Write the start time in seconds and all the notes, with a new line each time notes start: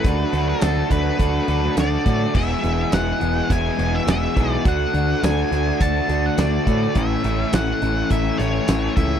Already playing: B4
0.04 D2 D3 G3 A3 A#3 D4 D#4 F#4 A4 A#4, kick, closed hi-hat
0.23 F#3 A3 D4 A4
0.33 D2 D3 A3 D4 F#4 A4, closed hi-hat
0.49 A4
0.61 D2 D3 A3 D4 F#4 A4, snare, closed hi-hat, tambourine
0.90 D2 D3 A3 D4 F#4 A4 B4, kick, closed hi-hat
1.19 D2 D3 A3 D4 F#4 A4, kick, closed hi-hat
1.48 D2 D3 A3 D4 F#4 A4, closed hi-hat
1.76 D2 D3 A3 D4 F#4 A4 D5, snare, closed hi-hat, tambourine
2.06 A2 D3 A3 D4 F#4 A4, kick, closed hi-hat
2.34 E1 E2 B2 E3 G#3 B3 E4 G#4 B4 E5, kick, crash
2.63 E1 E2 B2 E3 G#3 B3 E4 G#4, closed hi-hat
2.92 E1 E2 B2 E3 G#3 B3 E4 G#4 F#5, snare, closed hi-hat, tambourine
3.21 E1 E2 B2 E3 G#3 B3 E4 G#4, closed hi-hat
3.49 E1 E2 B2 E3 G#3 B3 E4 G#4 G#5, kick, closed hi-hat
3.77 E1 E2 B2 E3 G#3 B3 E4 G#4, closed hi-hat
3.95 E5
4.06 E1 E2 B2 E3 G#3 B3 E4 G#4, snare, closed hi-hat, tambourine
4.11 E5
4.35 B1 E2 B2 E3 G#3 B3 E4 G#4, kick, closed hi-hat
4.52 D5
4.64 D2 D3 A3 D4 F#4 D5, kick, closed hi-hat
4.68 F#5
4.93 D2 D3 A3 D4 F#4, closed hi-hat
5.22 D2 D3 A3 D4 F#4 G#5, snare, closed hi-hat, tambourine
5.51 D2 D3 A3 D4 F#4, closed hi-hat
5.80 D2 D3 A3 D4 F#4 A5, kick, closed hi-hat
6.08 D2 D3 A3 D4 F#4, closed hi-hat
6.26 F#5
6.37 D2 D3 A3 D4 F#4 D5, snare, closed hi-hat, tambourine
6.66 A2 D3 A3 D4 F#4, kick, closed hi-hat
6.94 A1 A2 E3 A3 C#4 E4 C#5 E5, kick, closed hi-hat
7.23 A1 A2 E3 A3 C#4 E4, closed hi-hat
7.52 A1 A2 E3 A3 C#4 E4 F#5, snare, closed hi-hat, tambourine
7.81 A1 A2 E3 A3 C#4 E4, closed hi-hat
8.10 A1 A2 E3 A3 C#4 E4 E5, kick, closed hi-hat
8.38 A1 A2 E3 A3 C#4 E4 C#5, closed hi-hat
8.68 A1 A2 E3 A3 C#4 E4, snare, closed hi-hat, tambourine
8.96 C#2 A2 E3 A3 C#4 E4 E5, kick, closed hi-hat